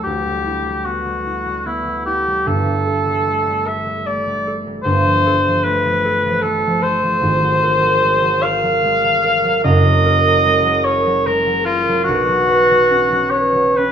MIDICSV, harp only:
0, 0, Header, 1, 2, 480
1, 0, Start_track
1, 0, Tempo, 795756
1, 27, Time_signature, 3, 2, 24, 8
1, 4827, Tempo, 813008
1, 7707, Tempo, 868307
1, 8281, End_track
2, 0, Start_track
2, 0, Title_t, "Harp"
2, 0, Program_c, 0, 46
2, 0, Note_on_c, 0, 64, 52
2, 37, Note_on_c, 0, 38, 56
2, 157, Note_on_c, 0, 55, 46
2, 270, Note_off_c, 0, 64, 0
2, 278, Note_on_c, 0, 64, 55
2, 383, Note_off_c, 0, 55, 0
2, 390, Note_on_c, 0, 55, 42
2, 513, Note_on_c, 0, 59, 47
2, 630, Note_off_c, 0, 55, 0
2, 638, Note_on_c, 0, 55, 49
2, 756, Note_off_c, 0, 64, 0
2, 763, Note_on_c, 0, 64, 46
2, 870, Note_off_c, 0, 55, 0
2, 878, Note_on_c, 0, 55, 48
2, 993, Note_off_c, 0, 59, 0
2, 1000, Note_on_c, 0, 59, 47
2, 1123, Note_off_c, 0, 55, 0
2, 1130, Note_on_c, 0, 55, 45
2, 1241, Note_off_c, 0, 64, 0
2, 1248, Note_on_c, 0, 64, 53
2, 1365, Note_off_c, 0, 55, 0
2, 1372, Note_on_c, 0, 55, 46
2, 1482, Note_on_c, 0, 31, 53
2, 1488, Note_on_c, 0, 43, 60
2, 1499, Note_off_c, 0, 38, 0
2, 1500, Note_off_c, 0, 64, 0
2, 1596, Note_off_c, 0, 55, 0
2, 1603, Note_on_c, 0, 55, 50
2, 1725, Note_on_c, 0, 69, 53
2, 1840, Note_off_c, 0, 55, 0
2, 1848, Note_on_c, 0, 55, 47
2, 1969, Note_on_c, 0, 57, 51
2, 2087, Note_off_c, 0, 55, 0
2, 2094, Note_on_c, 0, 55, 51
2, 2207, Note_off_c, 0, 69, 0
2, 2214, Note_on_c, 0, 69, 52
2, 2320, Note_off_c, 0, 55, 0
2, 2327, Note_on_c, 0, 55, 48
2, 2445, Note_off_c, 0, 57, 0
2, 2453, Note_on_c, 0, 57, 51
2, 2567, Note_off_c, 0, 55, 0
2, 2574, Note_on_c, 0, 55, 49
2, 2688, Note_off_c, 0, 69, 0
2, 2695, Note_on_c, 0, 69, 56
2, 2808, Note_off_c, 0, 55, 0
2, 2815, Note_on_c, 0, 55, 48
2, 2917, Note_off_c, 0, 31, 0
2, 2924, Note_off_c, 0, 43, 0
2, 2924, Note_on_c, 0, 31, 61
2, 2931, Note_on_c, 0, 43, 66
2, 2935, Note_off_c, 0, 59, 0
2, 2943, Note_off_c, 0, 55, 0
2, 3050, Note_on_c, 0, 53, 50
2, 3167, Note_off_c, 0, 69, 0
2, 3175, Note_on_c, 0, 69, 59
2, 3292, Note_off_c, 0, 53, 0
2, 3299, Note_on_c, 0, 53, 51
2, 3401, Note_off_c, 0, 57, 0
2, 3408, Note_on_c, 0, 57, 57
2, 3523, Note_off_c, 0, 53, 0
2, 3530, Note_on_c, 0, 53, 51
2, 3641, Note_off_c, 0, 69, 0
2, 3648, Note_on_c, 0, 69, 57
2, 3767, Note_off_c, 0, 53, 0
2, 3774, Note_on_c, 0, 53, 54
2, 3881, Note_off_c, 0, 57, 0
2, 3888, Note_on_c, 0, 57, 55
2, 4013, Note_off_c, 0, 53, 0
2, 4021, Note_on_c, 0, 53, 55
2, 4124, Note_off_c, 0, 69, 0
2, 4132, Note_on_c, 0, 69, 59
2, 4237, Note_off_c, 0, 53, 0
2, 4245, Note_on_c, 0, 53, 60
2, 4349, Note_on_c, 0, 32, 71
2, 4361, Note_on_c, 0, 44, 68
2, 4368, Note_off_c, 0, 31, 0
2, 4371, Note_off_c, 0, 43, 0
2, 4371, Note_off_c, 0, 57, 0
2, 4375, Note_off_c, 0, 69, 0
2, 4477, Note_on_c, 0, 54, 58
2, 4598, Note_on_c, 0, 70, 61
2, 4705, Note_off_c, 0, 54, 0
2, 4712, Note_on_c, 0, 54, 54
2, 4837, Note_on_c, 0, 56, 58
2, 4951, Note_off_c, 0, 54, 0
2, 4958, Note_on_c, 0, 54, 61
2, 5078, Note_off_c, 0, 70, 0
2, 5085, Note_on_c, 0, 70, 68
2, 5193, Note_off_c, 0, 54, 0
2, 5200, Note_on_c, 0, 54, 57
2, 5312, Note_off_c, 0, 56, 0
2, 5319, Note_on_c, 0, 56, 62
2, 5435, Note_off_c, 0, 54, 0
2, 5442, Note_on_c, 0, 54, 59
2, 5551, Note_off_c, 0, 70, 0
2, 5558, Note_on_c, 0, 70, 65
2, 5670, Note_off_c, 0, 54, 0
2, 5677, Note_on_c, 0, 54, 59
2, 5791, Note_on_c, 0, 30, 70
2, 5796, Note_on_c, 0, 42, 75
2, 5816, Note_off_c, 0, 32, 0
2, 5821, Note_off_c, 0, 44, 0
2, 5911, Note_off_c, 0, 54, 0
2, 5918, Note_on_c, 0, 54, 64
2, 6032, Note_off_c, 0, 70, 0
2, 6039, Note_on_c, 0, 70, 69
2, 6155, Note_off_c, 0, 54, 0
2, 6162, Note_on_c, 0, 54, 54
2, 6269, Note_off_c, 0, 56, 0
2, 6276, Note_on_c, 0, 56, 69
2, 6383, Note_off_c, 0, 54, 0
2, 6390, Note_on_c, 0, 54, 63
2, 6508, Note_off_c, 0, 70, 0
2, 6515, Note_on_c, 0, 70, 61
2, 6560, Note_off_c, 0, 53, 0
2, 6628, Note_off_c, 0, 54, 0
2, 6635, Note_on_c, 0, 54, 66
2, 6748, Note_off_c, 0, 56, 0
2, 6755, Note_on_c, 0, 56, 65
2, 6864, Note_off_c, 0, 54, 0
2, 6871, Note_on_c, 0, 54, 56
2, 6982, Note_off_c, 0, 70, 0
2, 6989, Note_on_c, 0, 70, 68
2, 7112, Note_off_c, 0, 54, 0
2, 7119, Note_on_c, 0, 54, 63
2, 7236, Note_on_c, 0, 35, 78
2, 7244, Note_off_c, 0, 30, 0
2, 7245, Note_off_c, 0, 42, 0
2, 7246, Note_off_c, 0, 70, 0
2, 7249, Note_off_c, 0, 56, 0
2, 7347, Note_off_c, 0, 54, 0
2, 7354, Note_on_c, 0, 54, 62
2, 7475, Note_on_c, 0, 71, 70
2, 7599, Note_off_c, 0, 54, 0
2, 7607, Note_on_c, 0, 54, 58
2, 7720, Note_on_c, 0, 61, 60
2, 7833, Note_off_c, 0, 54, 0
2, 7839, Note_on_c, 0, 54, 61
2, 7957, Note_off_c, 0, 71, 0
2, 7963, Note_on_c, 0, 71, 62
2, 8069, Note_off_c, 0, 54, 0
2, 8076, Note_on_c, 0, 54, 54
2, 8197, Note_off_c, 0, 61, 0
2, 8203, Note_on_c, 0, 61, 51
2, 8281, Note_off_c, 0, 35, 0
2, 8281, Note_off_c, 0, 54, 0
2, 8281, Note_off_c, 0, 61, 0
2, 8281, Note_off_c, 0, 71, 0
2, 8281, End_track
0, 0, End_of_file